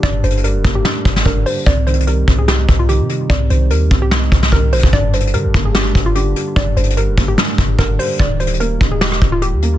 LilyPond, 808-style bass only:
\new Staff \with { instrumentName = "808-style bass" } { \clef bass \time 4/4 \key g \minor \tempo 4 = 147 g,,8 g,,8. f,,16 g,,8 r8 g,,8 g,,8 r8 | c,4. c,4 c,8. c8. | c,8 c,8 ees,8 c,4 c,8 c,8 bes,,16 c,16 | g,,4 d16 g,,16 g,,4 g,,4 r8 |
g,,8 g,,8. f,,16 g,,8 r8 g,,8 g,,8 r8 | ees,,4. ees,,4 ees,,8. ees,8. | }